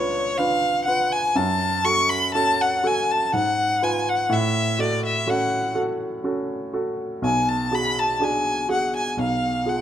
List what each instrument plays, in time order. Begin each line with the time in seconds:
Already playing: grand piano C#2 D4 F4 B4, violin C#5
0.37 grand piano D4 F4 B4, violin F5
0.85 grand piano F4 B4, violin F#5
1.12 violin G#5
1.36 grand piano F#2, violin A5
1.85 grand piano F#4 A4, violin C#6
2.09 violin B5
2.34 grand piano C#4 F#4 A4, violin A5
2.61 violin F#5
2.84 grand piano F#4 A4, violin G#5
3.11 violin A5
3.33 grand piano G#2, violin F#5
3.82 grand piano F4 B4, violin G#5
4.09 violin F#5
4.29 grand piano A2, violin E5
4.79 grand piano F#4 A4, violin D5
5.05 violin E5
5.27 grand piano C#4 F#4 A4, violin F#5
5.75 grand piano F#4 A4
6.24 grand piano C#4 F#4 A4
6.73 grand piano F#4 A4
7.22 grand piano B1, violin G#5
7.49 violin A5
7.71 grand piano F#4 G#4, violin B5
7.99 violin A5
8.20 grand piano D4 F#4 G#4, violin G#5
8.69 grand piano F#4 G#4, violin F#5
8.96 violin G#5
9.17 grand piano B1, violin F5
9.65 grand piano F4 G#4, violin F#5